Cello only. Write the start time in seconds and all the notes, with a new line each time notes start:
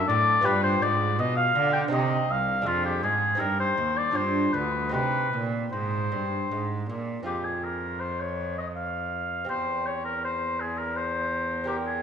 0.09 A2
0.46 G2
0.83 G#2
1.19 B2
1.56 D3
1.91 C3
2.30 C2
2.66 F2
3.03 G#2
3.40 G2
3.78 D#2
4.15 G2
4.54 D2
4.94 C3
5.34 A#2
5.73 G#2
6.12 G2
6.52 G#2
6.90 A#2
7.28 F2
9.48 E2